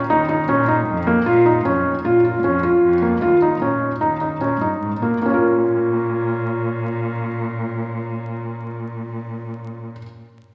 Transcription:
0.10 cello D#2, felt piano D#4
0.29 felt piano D#4
0.48 cello A#2, felt piano C#4
0.68 felt piano D#4
0.87 cello F2
1.07 felt piano A#3
1.26 cello A#2, felt piano F4
1.46 felt piano D#4
1.65 cello F2, felt piano C#4
2.04 cello A#2, felt piano F4
2.25 felt piano F4
2.43 cello F2, felt piano C#4
2.63 felt piano F4
2.82 cello F2
3.02 felt piano A#3
3.22 cello D#2, felt piano F4
3.42 felt piano D#4
3.62 cello A#2, felt piano C#4
4.00 cello D#2, felt piano D#4
4.21 felt piano D#4
4.40 cello A#2, felt piano C#4
4.60 cello G2, felt piano D#4
4.81 cello G#2
5.01 cello A#2, felt piano A#3
5.20 cello A#2, felt piano A#3
5.26 felt piano C#4
5.30 felt piano F4
5.34 felt piano A#4

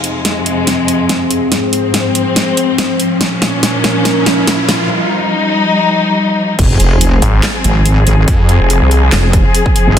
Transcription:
Already playing: string section F2 C3 G#3, ambient pad C4 D#4 G#4 F5, riser
0.04 closed hi-hat
0.25 snare, closed hi-hat
0.46 closed hi-hat
0.67 snare, closed hi-hat
0.88 closed hi-hat
1.09 snare, closed hi-hat
1.31 closed hi-hat
1.52 string section G#2 F3 C4, snare, closed hi-hat
1.73 closed hi-hat
1.94 snare, closed hi-hat
2.15 closed hi-hat
2.36 snare, closed hi-hat
2.57 closed hi-hat
2.78 snare, closed hi-hat
3.00 closed hi-hat
3.21 string section A#2 C#4, ambient pad C#4, snare, closed hi-hat
3.42 snare, closed hi-hat
3.50 ambient pad A#4
3.63 snare, closed hi-hat
3.84 snare, closed hi-hat
4.05 snare, closed hi-hat
4.26 snare, closed hi-hat
4.47 snare, closed hi-hat
4.69 snare, closed hi-hat
4.90 string section G3 D#4
6.59 wobble bass F1, string section F3 C4 G#4, ambient pad C4, kick, closed hi-hat, crash, sub drop
6.80 wobble bass F1, closed hi-hat
6.86 ambient pad G#4
7.01 closed hi-hat
7.22 detuned saw bass G#1, closed hi-hat
7.43 snare, clap, closed hi-hat
7.64 wobble bass G#1, closed hi-hat
7.86 closed hi-hat
8.07 wobble bass G#1, closed hi-hat
8.28 detuned saw bass F2, kick, closed hi-hat
8.49 closed hi-hat
8.60 detuned saw bass F1
8.70 closed hi-hat
8.81 detuned saw bass C2
8.91 closed hi-hat
9.12 wobble bass F1, snare, clap, closed hi-hat
9.33 kick, closed hi-hat
9.55 closed hi-hat
9.66 kick
9.76 closed hi-hat
9.87 wobble bass G1

